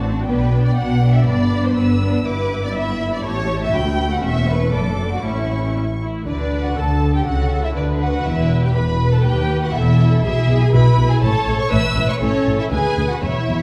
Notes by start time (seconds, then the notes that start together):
Already playing: A1 A2 F#4 A5
0.03 C4 D4
0.27 B1 B2 B3 D4 B4 G5
0.53 B3 D4
0.65 D5
0.76 B1 B2 B3 D4 F#5
1.02 B3 D4
1.15 E5
1.26 G1 G2 B3 D4 D5 B5
1.51 B3 D4
1.65 C5
1.76 G1 G2 B3 D4 B4 E6
2.01 B3 D4
2.26 G1 G2 B3 E4 B4 D6
2.64 D5
2.76 E5 B5
3.14 D5
3.24 A1 A2 A3 G4 C#5 A5
3.63 E5
3.73 D2 F#4 G5 B5
4.12 F#5
4.23 E1 E2 C#4 E5 C#6
4.49 B4
4.72 F#1 F#2 D4 A4 D6
5.12 F#4
5.24 A1 A2 A3 C#4 E4 C#6
5.76 C#4
6.02 E4
6.26 D2 D3 D4 B4 D5
6.65 F#4 F#5
6.77 D2 D3 A4 A5
7.15 G4 G5
7.26 C#2 C#3 F#4 A4 F#5
7.64 E4 E5
7.76 D2 D3 D4 B4 D5
8.02 F#4 F#5
8.26 E1 E2 E4 E5
8.64 G4 G5
8.75 E1 E2 B4 B5
9.13 A4 A5
9.24 D#2 G4 G5
9.63 F#4 F#5
9.74 E1 E2 E4 A4 E5
10.24 B1 B2 E4 G#4 E5
10.48 B1 B2
10.61 G#4 G#5
10.73 B1 B2 E4 B4 B5
10.98 B1 B2
11.10 G#4 G#5
11.22 A1 A2 A4 C#5 A5
11.48 A1 A2
11.59 C#5 C#6
11.72 A1 A2 B4 E5 E6
11.97 A1 A2
12.09 C#5 C#6
12.21 A1 A2 C#4 A4 C#5
12.47 A1 A2
12.60 E4 E5
12.72 D2 G#4 B4 G#5
12.97 D2
13.11 F#4 F#5
13.23 E1 E2 E4 C#5 E5
13.49 E1 E2